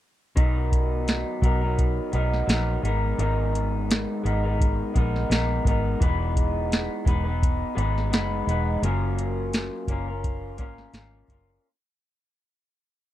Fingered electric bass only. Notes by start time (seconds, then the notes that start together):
0.37 B1
1.42 B1
2.13 B1
2.48 A#1
2.83 G#1
3.18 G#1
4.25 G#1
4.95 A#1
5.30 A#1
5.65 G#1
6.01 E1
7.06 E1
7.77 G#1
8.12 F#1
8.47 E1
8.82 F#1
9.87 F#1
10.59 G#1
10.93 G#1
11.28 F#1